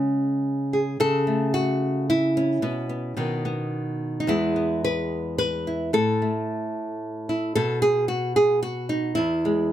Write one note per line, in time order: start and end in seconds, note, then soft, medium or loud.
0.00 0.96 C#3 medium
0.00 0.97 G#3 soft
0.00 1.00 C#4 medium
0.73 0.96 G#4 soft
1.00 2.59 C#3 medium
1.00 1.53 A4 loud
1.27 2.59 A3 soft
1.54 2.08 F#4 medium
2.10 2.63 E4 medium
2.37 4.20 C#4 medium
2.62 3.13 B2 medium
2.62 2.89 B3 soft
2.89 3.17 B3 soft
3.17 4.25 B2 medium
3.17 4.25 D#3 soft
3.17 3.45 B3 soft
3.45 4.25 B3 soft
4.20 4.28 D#4 medium
4.27 5.92 E2 medium
4.27 5.90 G#3 soft
4.27 4.55 B3 soft
4.27 4.83 E4 medium
4.56 5.90 B3 soft
4.85 5.37 B4 medium
5.38 5.93 B4 medium
5.67 5.90 E4 soft
5.93 7.55 A2 medium
5.93 7.29 A4 medium
6.22 7.52 A3 soft
7.29 7.55 E4 soft
7.55 9.14 B2 medium
7.55 7.82 A4 loud
7.82 8.08 G#4 medium
8.08 8.35 F#4 medium
8.36 8.62 G#4 medium
8.63 9.15 F#4 medium
8.89 9.16 D#4 medium
9.15 9.72 E2 medium
9.15 9.72 E4 medium
9.45 9.72 G#3 soft